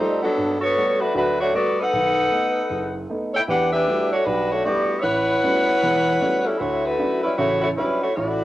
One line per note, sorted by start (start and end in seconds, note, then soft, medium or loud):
0.00 0.21 G3 medium
0.00 0.25 G3 soft
0.00 0.24 A3 soft
0.00 0.21 C4 medium
0.00 0.21 D#4 medium
0.00 0.25 D#4 soft
0.00 0.25 F4 medium
0.00 0.21 A4 medium
0.23 0.59 F#3 medium
0.23 0.59 B3 medium
0.23 0.59 D4 medium
0.23 0.59 A4 medium
0.38 0.71 G2 medium
0.61 0.98 B3 medium
0.61 0.98 F#4 medium
0.61 0.97 A4 medium
0.61 0.98 C#5 loud
0.78 1.03 G3 soft
0.78 1.03 A3 soft
0.78 1.03 B3 soft
0.78 1.04 F#4 medium
1.00 1.14 A3 medium
1.00 1.14 D4 medium
1.00 1.14 F#4 medium
1.00 1.14 B4 medium
1.15 1.48 D2 medium
1.15 1.48 F#3 medium
1.15 1.38 A3 medium
1.15 1.38 D4 medium
1.15 1.38 F#4 medium
1.15 1.38 B4 medium
1.40 1.53 A3 medium
1.40 1.53 D4 medium
1.40 1.53 F#4 medium
1.40 1.53 C#5 medium
1.53 1.80 G3 soft
1.53 1.80 A3 soft
1.53 1.80 B3 soft
1.53 1.77 B3 medium
1.53 1.80 F#4 soft
1.53 1.77 F#4 medium
1.53 1.77 A4 medium
1.53 1.77 D5 medium
1.80 2.96 D#4 medium
1.80 2.96 A4 medium
1.80 2.96 B4 medium
1.80 2.96 F#5 loud
1.93 2.26 B1 medium
1.93 2.26 D#3 medium
2.31 2.58 A3 soft
2.31 2.58 B3 soft
2.31 2.58 D#4 medium
2.70 3.04 F#1 medium
3.10 3.36 A3 soft
3.10 3.36 B3 soft
3.10 3.36 D#4 soft
3.34 3.41 E4 medium
3.34 3.41 A4 medium
3.34 3.40 C#5 medium
3.34 3.41 G5 medium
3.48 3.82 E2 medium
3.48 3.82 E3 medium
3.48 3.72 D4 medium
3.48 3.72 G4 medium
3.48 3.72 B4 medium
3.48 3.72 F#5 medium
3.73 4.09 D4 medium
3.73 4.09 G4 medium
3.73 4.09 B4 medium
3.73 4.09 E5 loud
3.87 4.14 G3 soft
3.87 4.14 A3 soft
3.87 4.14 D4 soft
3.87 4.14 E4 soft
3.87 4.14 F#4 medium
4.12 4.25 A3 medium
4.12 4.23 D4 medium
4.12 4.24 F#4 medium
4.12 4.25 C#5 medium
4.24 4.60 B1 medium
4.24 4.51 G3 medium
4.24 4.49 D4 medium
4.24 4.49 F#4 medium
4.24 4.51 B4 medium
4.50 4.65 A3 medium
4.50 4.65 D4 medium
4.50 4.64 F#4 medium
4.50 4.65 C#5 medium
4.65 4.92 G3 soft
4.65 4.92 A3 soft
4.65 4.97 B3 medium
4.65 4.92 D4 soft
4.65 4.92 E4 soft
4.65 4.97 F#4 medium
4.65 4.92 F#4 soft
4.65 4.97 G4 medium
4.65 4.97 D5 medium
4.99 6.44 E4 medium
4.99 6.45 B4 medium
4.99 6.45 C#5 medium
4.99 5.04 E5 medium
4.99 6.45 F#5 loud
5.03 5.37 A1 medium
5.44 5.70 G3 soft
5.44 5.70 A3 soft
5.44 5.70 B3 soft
5.44 5.70 C#4 soft
5.44 5.70 F#4 medium
5.83 6.16 E1 medium
5.83 6.16 E2 medium
6.21 6.48 G3 soft
6.21 6.48 A3 soft
6.21 6.48 B3 soft
6.21 6.48 C#4 soft
6.21 6.48 F#4 medium
6.45 6.59 G3 medium
6.45 6.60 C#4 medium
6.45 6.57 E4 medium
6.45 6.59 A4 medium
6.58 6.94 D2 medium
6.58 6.84 A3 medium
6.58 6.84 E4 medium
6.58 6.83 F#4 medium
6.58 6.84 C#5 medium
6.85 7.24 A3 medium
6.85 7.22 E4 medium
6.85 7.24 F#4 medium
6.85 7.22 B4 medium
6.99 7.25 F#3 soft
6.99 7.25 C#4 soft
6.99 7.25 D4 soft
6.99 7.25 E4 medium
7.23 7.37 G3 medium
7.23 7.36 C#4 medium
7.23 7.35 E4 medium
7.23 7.36 B4 medium
7.36 7.72 A1 medium
7.36 7.72 C#3 medium
7.36 7.60 A3 medium
7.36 7.60 E4 medium
7.36 7.60 F#4 medium
7.36 7.60 C#5 medium
7.61 7.68 A3 medium
7.61 7.68 E4 medium
7.61 7.68 F#4 medium
7.61 7.69 C#5 medium
7.76 8.04 F#3 soft
7.76 8.00 G3 medium
7.76 8.00 C#4 medium
7.76 8.04 C#4 soft
7.76 8.04 D4 soft
7.76 8.00 E4 medium
7.76 8.04 E4 medium
7.76 8.00 B4 medium
8.02 8.14 A3 medium
8.02 8.14 E4 medium
8.02 8.14 F#4 medium
8.02 8.14 C#5 medium
8.15 8.44 A1 medium
8.15 8.44 A3 medium
8.15 8.44 E4 medium
8.15 8.44 F#4 medium
8.15 8.44 D5 medium